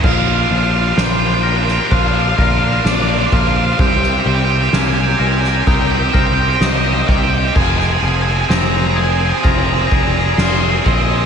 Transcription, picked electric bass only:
X:1
M:4/4
L:1/8
Q:1/4=64
K:Bbmix
V:1 name="Picked electric bass" clef=bass
B,,, B,,, B,,,2 B,,, B,,, B,,, B,,, | C,, C,, C,, C,, C,, C,, C,, C,, | F,,, F,,, F,,,2 F,,, F,,, F,,, B,,, |]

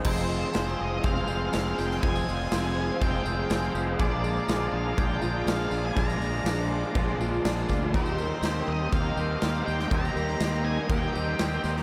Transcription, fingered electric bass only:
X:1
M:4/4
L:1/8
Q:1/4=122
K:Fm
V:1 name="Fingered electric bass" clef=bass
F,,,2 F,,, F,,, F,,, F,,, F,,, F,,, | F,,, F,,, F,,,2 F,,, F,,, F,,, F,,, | B,,,2 B,,, B,,, B,,, B,,, B,,, B,,, | B,,, B,,, B,,,2 B,,, B,,, B,,, =D,, |
E,,2 E,, E,, E,, E,, E,, E,, | E,, E,, E,,2 E,, E,, E,, E,, |]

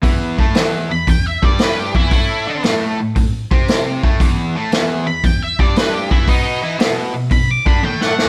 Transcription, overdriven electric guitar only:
X:1
M:4/4
L:1/8
Q:"Swing" 1/4=116
K:A
V:1 name="Overdriven electric guitar" clef=bass
[E,,E,] [A,,A,] [E,,E,] E,, E,, [=G,,=G,]2 [E,,E,] | [A,,A,] [D,D] [A,,A,] A,, A,, [=C,=C]2 [A,,A,] | [E,,E,] [A,,A,] [E,,E,] E,, E,, [=G,,=G,]2 [E,,E,] | [B,,B,] [E,E] [B,,B,] B,, B,, [D,D] [A,,A,]2 |]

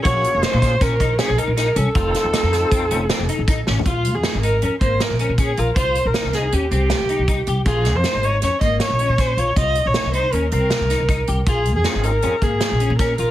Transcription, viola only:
X:1
M:5/4
L:1/16
Q:1/4=158
K:Fphr
V:1 name="Viola"
d4 c4 B4 A2 B2 B2 =A2- | =A16 z4 | [K:Bbdor] F3 A3 B2 B2 c2 B2 B2 A2 B2 | c3 B3 A2 G2 G8 z2 |
A3 c3 d2 d2 e2 d4 c2 d2 | e3 d3 c2 B2 B8 z2 | A3 A3 B4 A6 B2 B2 |]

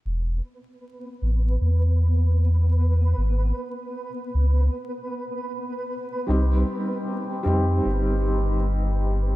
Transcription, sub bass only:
X:1
M:4/4
L:1/8
Q:"Swing 16ths" 1/4=77
K:C
V:1 name="Sub bass" clef=bass
E,,, z2 A,,, E,,4 | ^G,,, z2 ^C,, z4 | C,, z2 F,, G,,,4 |]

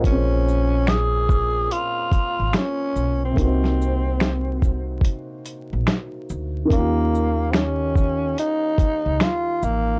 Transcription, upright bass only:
X:1
M:4/4
L:1/16
Q:"Swing 16ths" 1/4=72
K:Bbm
V:1 name="Upright bass" clef=bass
B,,,8 z3 A,,, z2 _C,,2 | C,,8 z3 B,,, z2 =D,,2 | E,,8 z3 D,, z2 =A,,,2 |]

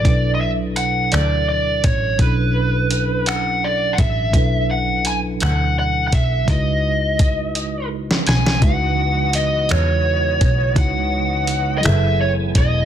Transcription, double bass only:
X:1
M:6/8
L:1/8
Q:3/8=56
K:C#phr
V:1 name="Double bass" clef=bass
B,,,3 D,,2 A,,, | B,,,4- B,,, A,,, | B,,,3 D,,2 B,,, | C,,4- C,, B,,, |
C,,3 E,,2 B,,, | C,,3 F,,,2 E,,, |]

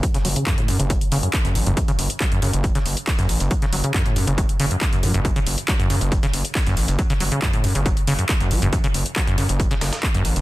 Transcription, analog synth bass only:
X:1
M:4/4
L:1/16
Q:1/4=138
K:F#m
V:1 name="Analog synth bass" clef=bass
z2 F,,, z3 F,, F,,,2 z F,,, z2 F,,, A,,, F,,, | z2 F,,, z3 F,, F,,,2 z F,,, z2 F,,, A,,, F,,, | z2 F,,, z3 F,, F,,,2 z F,,, z3 F,, F,,,- | F,,, z F,,, z3 F,, F,,,2 z F,,, z2 F,,, A,,, F,,, |
z2 F,,, z3 F,, F,,,2 z F,,, z2 F,,, A,,, F,,, | z2 F,,, z3 F,, F,,,2 z F,,, z2 F,,, A,,, F,,, |]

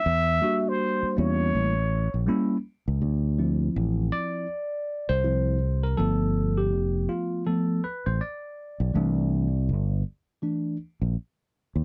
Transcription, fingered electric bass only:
X:1
M:4/4
L:1/16
Q:"Swing 16ths" 1/4=81
K:Dm
V:1 name="Fingered electric bass" clef=bass
E,,2 z4 E,,2 A,,,3 B,,, z3 ^C,, | D,,4 A,,,2 z4 z C,,4- C,, | G,,,4 F,,,2 z4 z A,,, z3 =B,,, | C,,4 G,,,2 z4 z B,,, z3 _E,, |]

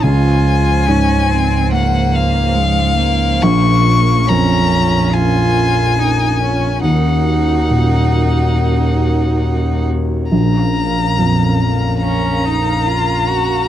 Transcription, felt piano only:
X:1
M:4/4
L:1/8
Q:1/4=70
K:Bbm
V:1 name="Felt piano" clef=bass
D,,2 A,,6 | B,,,2 F,,6 | E,,2 B,,6 | B,,,2 F,,6 |]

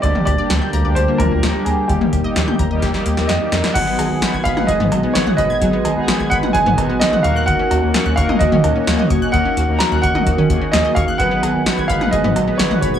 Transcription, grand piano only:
X:1
M:4/4
L:1/8
Q:1/4=129
K:Eb
V:1 name="Grand piano"
d d3 c B2 A | G6 e2 | [K:Abdor] g3 f e2 d e- | e3 g a2 e f |
g3 f e4 | g2 b g3 e f | g3 f e2 d d |]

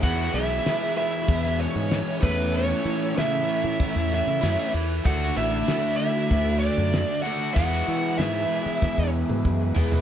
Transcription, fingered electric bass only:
X:1
M:4/4
L:1/16
Q:1/4=96
K:Emix
V:1 name="Fingered electric bass" clef=bass
E,,2 B,,,2 z4 E,,3 G,,2 z E,,2- | E,,2 E,2 C,2 z E, z E,,2 C, F,, z E,,2 | D,,2 A,,,2 z4 D,,3 F,,2 z3 | E,,2 E,2 G,,2 z E, z E,,2 G,, F,,2 E,,2 |]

